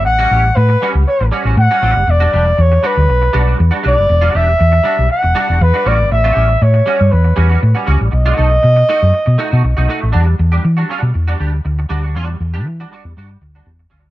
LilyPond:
<<
  \new Staff \with { instrumentName = "Flugelhorn" } { \time 4/4 \key e \dorian \tempo 4 = 119 fis''4 b'4 cis''8 r8 fis''4 | d''4 cis''8 b'4. r8 d''8~ | d''8 e''4. fis''4 b'8 d''8 | e''4 cis''4 b'4. r8 |
dis''2.~ dis''8 r8 | r1 | r1 | }
  \new Staff \with { instrumentName = "Clean electric guitar" } { \time 4/4 \key e \dorian r16 <g cis' fis'>16 <g cis' g'>16 r8. <g cis' fis'>8 r8 <g cis' fis'>16 <g cis' fis'>16 r16 <g cis' fis'>16 <g cis' fis'>8 | r16 <g d' fis'>16 <g d' g'>16 r8. <g d' fis'>8 r8 <g d' fis'>16 <g d' fis'>16 r16 <g d' fis'>16 <g d' fis'>8 | r16 <g d' fis'>16 <g d' g'>16 r8. <g d' fis'>8 r8 <g d' fis'>16 <g d' fis'>16 r16 <g d' fis'>16 <g cis' fis'>8 | r16 <g cis' fis'>16 <g cis' g'>16 r8. <g cis' fis'>8 r8 <g cis' fis'>16 <g cis' fis'>16 r16 <g cis' fis'>16 <g cis' fis'>8 |
r16 <a dis' fis'>16 <a dis' a'>16 r8. <a dis' fis'>8 r8 <a dis' fis'>16 <a dis' fis'>16 r16 <a dis' fis'>16 <a dis' fis'>8 | <g d' fis'>8 r16 <g d' g'>16 r16 <g d' fis'>16 <g d' fis'>8 r16 <g d' fis'>16 <g d' g'>16 r8. <g d' fis'>16 <g d' fis'>16 | <g d' fis'>8 r16 <g d' g'>16 r16 <g d' fis'>16 <g d' fis'>8 <g d' fis'>8 r16 <g d' fis'>16 r8 <g d' fis'>8 | }
  \new Staff \with { instrumentName = "Fingered electric bass" } { \clef bass \time 4/4 \key e \dorian a,,8 a,,8 a,8 r16 cis,16 r16 a,,16 r16 a,,16 a,16 r16 a,,16 fis,,16 | e,,8 e,,8 e,8 r16 d,16 b,,8 b,,8 e,16 r16 b,,16 fis,,16 | e,,8 e,,8 e,8 r16 b,,16 r16 e,,16 r16 e,,16 e,16 r16 a,,16 g,,16 | a,,8 a,,8 a,8 r16 g,16 e,8 e,8 a,16 r16 cis,16 a,,16 |
b,,8 b,,8 b,8 r16 fis,16 r16 b,16 r16 b,16 b,,16 b,,16 r16 a,,16 | e,8 e,8 e8 r16 b,16 e,8 d,8 d,8 d,8 | e,8 e,8 e8 r16 e,16 g,8 d,8 e,8 d,8 | }
>>